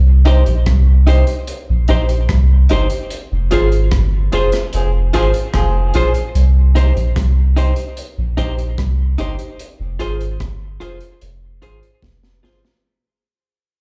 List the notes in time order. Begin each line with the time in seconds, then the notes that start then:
Already playing: C2
0.25 D#4 G4 C5, closed hi-hat
0.46 A#1, closed hi-hat
0.66 C2, kick, cross-stick, closed hi-hat
1.06 D#4 G4 C5, closed hi-hat
1.27 closed hi-hat
1.47 closed hi-hat
1.70 A#1
1.88 A#1 D#4 G4 C5, closed hi-hat
2.09 closed hi-hat
2.29 C2, kick, cross-stick, closed hi-hat
2.69 G1 D#4 G4 C5, closed hi-hat
2.90 closed hi-hat
3.10 closed hi-hat
3.32 F1
3.51 G#1 F4 G#4 C5, closed hi-hat
3.72 closed hi-hat
3.91 G1, kick, cross-stick, closed hi-hat
4.32 F1 F4 G#4 C5, closed hi-hat
4.52 cross-stick, closed hi-hat
4.73 F1 F3 C4 G#4, closed hi-hat
5.13 G#1 F3 C4 F4 G#4 C5, closed hi-hat
5.34 closed hi-hat
5.53 F1 F3 C4 G#4, kick, cross-stick, closed hi-hat
5.94 A#1 F4 G#4 C5, closed hi-hat
6.14 closed hi-hat
6.35 C2, closed hi-hat
6.75 D#4 G4 C5, closed hi-hat
6.97 A#1, closed hi-hat
7.16 C2, kick, cross-stick, closed hi-hat
7.56 D#4 G4 C5, closed hi-hat
7.76 closed hi-hat
7.97 closed hi-hat
8.18 A#1
8.37 A#1 D#4 G4 C5, closed hi-hat
8.59 closed hi-hat
8.78 C2, kick, cross-stick, closed hi-hat
9.18 G1 D#4 G4 C5, closed hi-hat
9.39 closed hi-hat
9.59 closed hi-hat
9.80 F1
9.99 G#1 F4 G#4 C5, closed hi-hat
10.21 closed hi-hat
10.40 G1, kick, cross-stick, closed hi-hat
10.80 F1 F4 G#4 C5, closed hi-hat
11.01 closed hi-hat
11.21 F1, closed hi-hat
11.61 G#1 F4 G#4 C5, closed hi-hat
11.83 closed hi-hat
12.02 F1, kick, snare
12.23 snare
12.43 G1 F4 G#4 C5, snare
12.65 snare